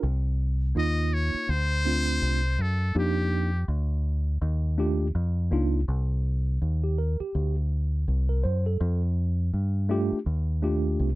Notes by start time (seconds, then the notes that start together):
0.03 C2
0.75 D#2 A#3 D#4 F4 D#5
1.14 C#5
1.34 muted fingered electric bass stroke
1.49 D2 C5
1.85 A3 C4 D4 F4
2.22 C2
2.59 F#2 A4
2.95 F2 A#3 D4 D#4 G4
3.68 D2
4.42 D#2
4.78 A3 D4 F4 G4
5.15 F2
5.51 C#2 A#3 D4 D#4 F4
5.88 C2
6.62 D#2
6.84 G4
6.98 A#4
7.20 G4, muted fingered electric bass stroke
7.35 D2
8.08 C2
8.29 A#4
8.44 F#2 C5
8.66 A4
8.81 F2
9.53 G2
9.89 A3 D4 F4 G4
10.12 muted fingered electric bass stroke
10.26 D#2
10.62 A3 D4 F4 G4
11.00 C2